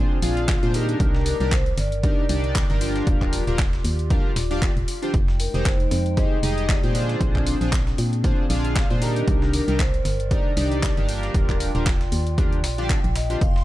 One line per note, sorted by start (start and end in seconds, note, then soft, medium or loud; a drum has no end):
0.00 0.98 C4 medium
0.00 0.18 D4 medium
0.00 0.98 D4 medium
0.00 0.18 F4 medium
0.00 0.18 G#4 medium
0.00 0.98 G#4 medium
0.00 0.18 C5 medium
0.22 0.57 A#1 loud
0.22 0.59 D4 medium
0.22 0.59 F4 medium
0.22 0.59 G#4 medium
0.22 0.60 F5 loud
0.22 closed hi-hat medium
0.22 open hi-hat loud
0.37 closed hi-hat medium
0.48 kick loud
0.48 snare loud
0.48 clap loud
0.48 closed hi-hat medium
0.62 0.95 A#2 medium
0.62 0.72 D4 medium
0.62 0.72 F4 medium
0.62 0.73 G#4 medium
0.62 0.73 C5 loud
0.62 closed hi-hat soft
0.73 1.37 D4 medium
0.73 1.37 D#4 medium
0.73 1.37 G4 medium
0.73 1.37 A#4 loud
0.73 closed hi-hat medium
0.73 open hi-hat medium
0.89 closed hi-hat medium
1.00 1.35 C2 loud
1.00 3.05 D#3 medium
1.00 3.05 A#4 medium
1.00 5.10 D5 medium
1.00 kick loud
1.00 closed hi-hat medium
1.15 snare medium
1.26 1.50 A#4 medium
1.26 closed hi-hat medium
1.26 open hi-hat loud
1.40 1.73 C2 loud
1.40 1.51 D4 medium
1.40 1.52 D#4 medium
1.40 1.52 G4 medium
1.40 1.52 A#4 loud
1.40 closed hi-hat medium
1.52 1.63 C5 loud
1.52 kick loud
1.52 snare loud
1.52 clap loud
1.52 closed hi-hat medium
1.66 closed hi-hat soft
1.78 2.12 G1 loud
1.78 2.26 D5 loud
1.78 snare medium
1.78 closed hi-hat medium
1.78 open hi-hat medium
1.92 closed hi-hat medium
2.03 2.24 D4 medium
2.03 2.25 D#4 medium
2.03 2.25 G4 medium
2.03 2.25 A#4 medium
2.03 kick loud
2.03 closed hi-hat medium
2.29 2.64 C2 loud
2.29 2.66 D4 medium
2.29 2.66 D#4 medium
2.29 2.66 G4 medium
2.29 2.67 D5 loud
2.29 closed hi-hat medium
2.29 open hi-hat loud
2.44 closed hi-hat medium
2.55 kick loud
2.55 snare loud
2.55 clap loud
2.55 closed hi-hat medium
2.69 3.02 G1 medium
2.69 2.79 D4 medium
2.69 2.79 D#4 medium
2.69 2.79 G4 medium
2.69 2.80 A#4 loud
2.69 closed hi-hat soft
2.80 3.43 D4 medium
2.80 3.44 F4 medium
2.80 3.44 G4 medium
2.80 3.44 A#4 loud
2.80 closed hi-hat medium
2.80 open hi-hat loud
2.96 snare soft
2.96 closed hi-hat medium
3.07 3.42 D#1 loud
3.07 5.12 F4 medium
3.07 5.12 G4 medium
3.07 kick loud
3.07 closed hi-hat medium
3.22 kick medium
3.22 clap soft
3.33 closed hi-hat medium
3.33 open hi-hat loud
3.47 3.80 D#1 loud
3.47 3.58 D4 medium
3.47 3.59 F4 medium
3.47 3.59 G4 medium
3.47 3.59 A#4 medium
3.47 closed hi-hat soft
3.59 kick loud
3.59 snare loud
3.59 clap loud
3.59 closed hi-hat medium
3.73 snare medium
3.73 closed hi-hat soft
3.84 4.19 D#2 medium
3.84 open hi-hat medium
3.99 closed hi-hat medium
4.10 4.31 D4 medium
4.10 4.31 F4 medium
4.10 4.32 G4 medium
4.10 4.32 A#4 medium
4.10 kick loud
4.10 closed hi-hat medium
4.36 4.71 D#1 loud
4.36 snare loud
4.36 closed hi-hat medium
4.36 open hi-hat loud
4.50 4.70 D4 loud
4.50 4.71 F4 medium
4.50 4.71 G4 medium
4.50 4.71 D5 loud
4.50 closed hi-hat soft
4.62 kick loud
4.62 snare medium
4.62 clap loud
4.62 closed hi-hat medium
4.77 4.85 D#1 loud
4.77 closed hi-hat soft
4.88 closed hi-hat medium
4.88 open hi-hat loud
5.02 5.12 D4 medium
5.02 5.12 F4 medium
5.02 5.13 G4 medium
5.02 5.13 C5 medium
5.02 closed hi-hat medium
5.14 5.48 F1 loud
5.14 6.93 G#3 medium
5.14 6.93 D#4 medium
5.14 6.93 G5 medium
5.14 kick loud
5.14 closed hi-hat medium
5.28 snare medium
5.40 5.64 A#4 medium
5.40 closed hi-hat medium
5.40 open hi-hat loud
5.54 5.87 F1 loud
5.54 5.65 D#4 medium
5.54 5.65 G4 medium
5.54 5.66 G#4 medium
5.54 5.66 C5 medium
5.54 closed hi-hat soft
5.65 6.19 C5 loud
5.65 kick loud
5.65 snare loud
5.65 clap loud
5.65 closed hi-hat medium
5.80 closed hi-hat soft
5.91 6.26 F2 medium
5.91 snare medium
5.91 closed hi-hat medium
5.91 open hi-hat medium
6.06 closed hi-hat soft
6.17 6.38 D#4 medium
6.17 6.38 G4 medium
6.17 6.39 G#4 medium
6.17 6.39 C5 medium
6.17 6.71 D#5 loud
6.17 kick loud
6.17 closed hi-hat medium
6.43 6.78 F1 loud
6.43 6.80 D#4 medium
6.43 6.80 G4 medium
6.43 6.80 G#4 medium
6.43 6.80 D#5 loud
6.43 closed hi-hat medium
6.43 open hi-hat loud
6.58 closed hi-hat medium
6.69 7.07 D5 medium
6.69 kick loud
6.69 snare loud
6.69 clap loud
6.69 closed hi-hat medium
6.83 7.16 A#2 medium
6.83 6.93 D#4 medium
6.83 6.93 G4 medium
6.83 6.93 G#4 medium
6.83 6.93 C5 loud
6.83 closed hi-hat soft
6.94 9.25 C4 medium
6.94 7.57 D4 medium
6.94 9.25 D4 medium
6.94 7.57 F4 medium
6.94 9.25 G#4 medium
6.94 7.58 G#4 medium
6.94 7.58 C5 loud
6.94 closed hi-hat medium
6.94 open hi-hat medium
7.09 snare soft
7.09 closed hi-hat medium
7.21 7.55 A#1 loud
7.21 kick loud
7.21 closed hi-hat medium
7.35 kick medium
7.35 clap soft
7.47 closed hi-hat medium
7.47 open hi-hat loud
7.61 7.94 A#1 loud
7.61 7.72 D4 medium
7.61 7.72 F4 medium
7.61 7.72 G#4 medium
7.61 7.73 C5 loud
7.61 closed hi-hat medium
7.72 kick loud
7.72 snare loud
7.72 clap loud
7.72 closed hi-hat medium
7.87 snare medium
7.87 closed hi-hat soft
7.98 8.33 A#2 loud
7.98 open hi-hat medium
8.13 closed hi-hat medium
8.24 8.45 D4 medium
8.24 8.45 F4 medium
8.24 8.45 G#4 medium
8.24 8.46 C5 medium
8.24 kick loud
8.24 closed hi-hat medium
8.50 8.85 A#1 loud
8.50 8.87 D4 loud
8.50 8.87 F4 medium
8.50 8.87 G#4 medium
8.50 8.87 F5 loud
8.50 closed hi-hat medium
8.50 open hi-hat loud
8.65 closed hi-hat medium
8.76 kick loud
8.76 snare loud
8.76 clap loud
8.76 closed hi-hat medium
8.90 9.23 A#2 medium
8.90 9.00 D4 medium
8.90 9.00 F4 medium
8.90 9.00 G#4 medium
8.90 9.00 C5 loud
8.90 closed hi-hat soft
9.01 9.64 D4 medium
9.01 9.64 D#4 medium
9.01 9.65 G4 medium
9.01 9.65 A#4 loud
9.01 closed hi-hat medium
9.01 open hi-hat medium
9.16 closed hi-hat medium
9.28 9.62 C2 loud
9.28 11.32 D#3 medium
9.28 11.32 A#4 medium
9.28 13.37 D5 medium
9.28 kick loud
9.28 closed hi-hat medium
9.42 snare medium
9.53 9.80 A#4 medium
9.53 closed hi-hat medium
9.53 open hi-hat loud
9.68 10.01 C2 loud
9.68 9.79 D4 medium
9.68 9.79 D#4 medium
9.68 9.79 G4 medium
9.68 9.79 A#4 loud
9.68 closed hi-hat medium
9.79 10.33 C5 loud
9.79 kick loud
9.79 snare loud
9.79 clap loud
9.79 closed hi-hat medium
9.94 closed hi-hat soft
10.05 10.40 G1 loud
10.05 snare medium
10.05 closed hi-hat medium
10.05 open hi-hat medium
10.20 closed hi-hat medium
10.31 10.52 D4 medium
10.31 10.52 D#4 medium
10.31 10.52 G4 medium
10.31 10.53 A#4 medium
10.31 11.05 D5 loud
10.31 kick loud
10.31 closed hi-hat medium
10.56 10.91 C2 loud
10.56 10.94 D4 medium
10.56 10.94 D#4 medium
10.56 10.94 G4 medium
10.56 10.94 D5 loud
10.56 closed hi-hat medium
10.56 open hi-hat loud
10.72 closed hi-hat medium
10.83 kick loud
10.83 snare loud
10.83 clap loud
10.83 closed hi-hat medium
10.97 11.30 G1 medium
10.97 11.07 D4 medium
10.97 11.07 D#4 medium
10.97 11.07 G4 medium
10.97 11.07 A#4 medium
10.97 closed hi-hat soft
11.08 11.71 D4 medium
11.08 11.71 F4 medium
11.08 11.72 G4 medium
11.08 11.72 A#4 loud
11.08 closed hi-hat medium
11.08 open hi-hat medium
11.23 snare soft
11.23 closed hi-hat medium
11.34 11.69 D#1 loud
11.34 13.39 F4 medium
11.34 13.64 G5 medium
11.34 kick loud
11.34 closed hi-hat medium
11.49 kick medium
11.49 clap soft
11.49 closed hi-hat soft
11.60 closed hi-hat medium
11.60 open hi-hat loud
11.75 12.08 D#1 loud
11.75 11.86 D4 medium
11.75 11.86 F4 medium
11.75 11.86 G4 medium
11.75 11.86 A#4 loud
11.75 closed hi-hat medium
11.86 kick loud
11.86 snare loud
11.86 clap loud
11.86 closed hi-hat medium
12.01 snare medium
12.01 closed hi-hat soft
12.12 12.65 D#2 medium
12.12 open hi-hat medium
12.27 closed hi-hat medium
12.38 12.59 D4 medium
12.38 12.59 F4 medium
12.38 12.59 G4 medium
12.38 12.59 A#4 medium
12.38 kick loud
12.38 closed hi-hat medium
12.53 closed hi-hat soft
12.64 12.98 A#1 medium
12.64 snare loud
12.64 closed hi-hat medium
12.64 open hi-hat loud
12.78 12.98 D4 medium
12.78 12.98 F4 medium
12.78 12.98 G4 medium
12.78 12.98 D5 loud
12.78 closed hi-hat medium
12.90 kick loud
12.90 clap loud
12.90 closed hi-hat medium
13.04 13.37 A#1 loud
13.04 closed hi-hat soft
13.15 13.42 D#5 medium
13.15 snare loud
13.15 closed hi-hat medium
13.15 open hi-hat medium
13.30 13.40 D4 medium
13.30 13.40 F4 medium
13.30 13.40 G4 medium
13.30 13.40 C5 medium
13.30 closed hi-hat medium
13.41 13.64 F1 loud
13.41 13.64 G#3 medium
13.41 13.64 D#4 medium
13.41 13.64 F5 loud
13.41 13.64 C6 medium
13.41 kick loud
13.41 closed hi-hat medium
13.56 snare medium